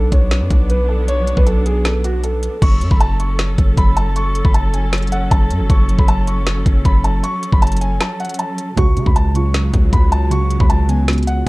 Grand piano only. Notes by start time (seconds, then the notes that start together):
0.12 C#5
0.70 B4
0.89 A4
1.08 C#5
1.37 B4
1.46 A4
1.66 G#4
1.85 A4
2.04 F#4
2.24 A4
2.62 C#6
2.91 B5
3.00 A5
3.20 C#6
3.78 B5
3.97 A5
4.16 C#6
4.45 B5
4.54 A5
4.74 G#5
5.12 F#5
5.31 A5
5.70 C#6
5.99 B5
6.08 A5
6.27 C#6
6.85 B5
7.04 A5
7.23 C#6
7.53 B5
7.62 A5
7.81 G#5
8.01 A5
8.20 F#5
8.39 A5
8.78 C#6
9.06 B5
9.16 A5
9.35 C#6
9.93 B5
10.12 A5
10.31 C#6
10.60 B5
10.70 A5
10.89 G#5
11.27 F#5